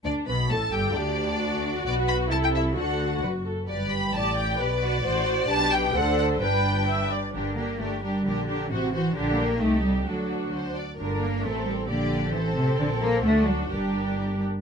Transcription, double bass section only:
X:1
M:2/4
L:1/8
Q:1/4=132
K:G
V:1 name="Double bass section" clef=bass
D,, B,,, A,,, G,,, | D,,4 | B,,,2 C,,2 | D,,2 F,,, z |
G,,,2 A,,,2 | B,,,2 A,,,2 | B,,,2 D,,2 | G,,,3 z |
[K:Gm] G,,,2 G,,,2 | B,,,2 A,,,2 | B,,,2 C,,2 | D,,3 z |
G,,,2 A,,,2 | B,,,2 A,,,2 | B,,,2 D,,2 | G,,,3 z |]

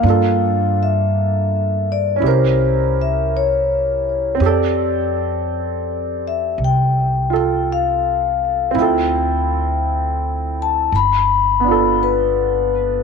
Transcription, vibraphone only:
X:1
M:4/4
L:1/8
Q:"Swing" 1/4=55
K:Flyd
V:1 name="Vibraphone"
f e2 d c e _d2 | d3 e g2 f2 | g3 a b2 B2 |]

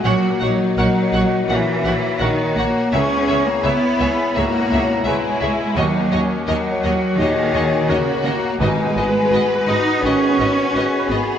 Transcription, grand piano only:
X:1
M:4/4
L:1/8
Q:1/4=84
K:G#m
V:1 name="Grand piano"
(3A,, A, c (3A c F (3A,, A, c (3A c F | (3C,, B, c (3B c E (3G,, B,, c (3B c E | (3D,, A, c (3A c F (3A,, A, c (3A c F | (3G,, B, B (3F B F (3D, B, B (3F B F |]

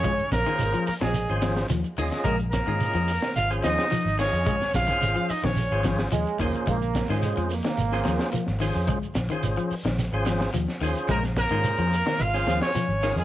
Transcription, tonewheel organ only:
X:1
M:4/4
L:1/16
Q:1/4=109
K:Bbm
V:1 name="Tonewheel organ"
[DFAd] z2 [DFAc]3 z3 [DFAc]3 z2 [DFAe]2- | [DFAe] z2 [DFAe]3 z3 [DFAc]3 z2 [DFAe]2- | [DFAe] z2 [DFAc]3 z3 [DFAc]3 z2 [DFAc]2- | [DFAc] z2 [DFAc]3 z3 [DFAc]3 z2 [DFAc]2- |
[DFAc] z2 [DFAc]3 z3 [DFAc]3 z2 [DFAc]2- | [DFAc] z2 [DFAc]3 z3 [DFAc]3 z2 [DFAB]2 |]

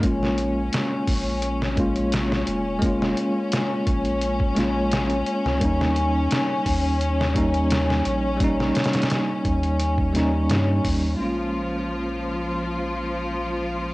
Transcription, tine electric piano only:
X:1
M:4/4
L:1/16
Q:1/4=86
K:Bbdor
V:1 name="Tine electric piano"
[A,B,DF]8- [A,B,DF]2 [A,B,DF] z4 z | [A,B,DF]8- [A,B,DF]2 [A,B,DF] z4 z | [G,B,DE]8- [G,B,DE]2 [G,B,DE] z4 z | [G,B,DE]8- [G,B,DE]2 [G,B,DE] z4 z |
[A,B,DF]16 |]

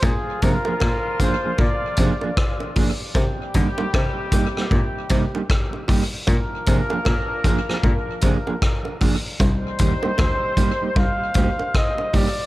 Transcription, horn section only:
X:1
M:4/4
L:1/8
Q:"Swing 16ths" 1/4=77
K:Cm
V:1 name="Horn section"
[D,F,B,F]6- [D,F,B,F] z | [C,G,CG]6- [C,G,CG] z | [F,B,DB]6- [F,B,DB] z | [G,CEc]6- [G,CEc] z |]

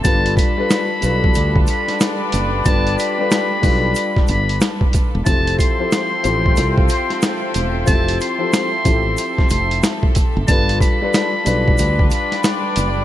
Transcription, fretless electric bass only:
X:1
M:4/4
L:1/16
Q:"Swing 16ths" 1/4=92
K:Gmix
V:1 name="Fretless electric bass" clef=bass
G,,,2 z4 B,,,2 D,,2 z4 _G,,,2 | G,,,2 z4 B,,,2 z2 G,,,2 z3 E,,, | F,,,2 z4 A,,,2 C,,2 z4 E,,,2 | F,,,2 z4 A,,,2 z2 F,,,2 z3 _G,,, |
G,,,2 z4 B,,,2 D,,2 z4 _G,,,2 |]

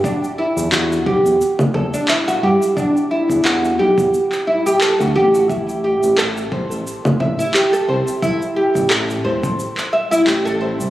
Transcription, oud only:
X:1
M:4/4
L:1/16
Q:"Swing 16ths" 1/4=88
K:Em
V:1 name="Oud"
D z E2 F2 G4 A D E F G z | D z E2 F2 G4 E G A F G F | E z G2 A2 c4 e E G A c z | E z G2 A2 c4 e E G A c z |]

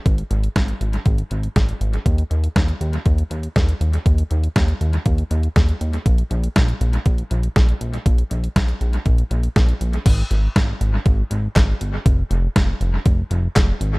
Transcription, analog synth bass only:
X:1
M:4/4
L:1/8
Q:1/4=120
K:Ebmix
V:1 name="Analog synth bass" clef=bass
A,,, A,,, A,,, A,,, A,,, A,,, A,,, A,,, | E,, E,, E,, E,, E,, E,, E,, E,, | E,, E,, E,, E,, E,, E,, E,, E,, | B,,, B,,, B,,, B,,, B,,, B,,, B,,, B,,, |
B,,, B,,, B,,, B,,, B,,, B,,, B,,, B,,, | A,,, A,,, A,,, A,,, A,,, A,,, A,,, G,,, | F,,, F,,, F,,, F,,, F,,, F,,, F,,, A,,, |]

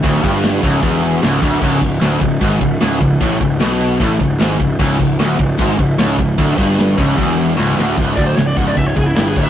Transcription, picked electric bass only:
X:1
M:4/4
L:1/8
Q:1/4=151
K:C#phr
V:1 name="Picked electric bass" clef=bass
D,,, =G,,,2 C,,, E,,,2 C,,, D,,, | C,,, C,,, D,,, C,,, G,,, C,,, C,,, C,,, | A,,, C,,, B,,,2 A,,, C,,, G,,, C,,, | C,,, C,,, D,,, C,,, G,,, C,,, C,,, C,,, |
D,,, =G,,,2 C,,, E,,,2 C,,, D,,, | C,,, D,,, C,,, C,,, C,,, C,,, =G,,, D,,, |]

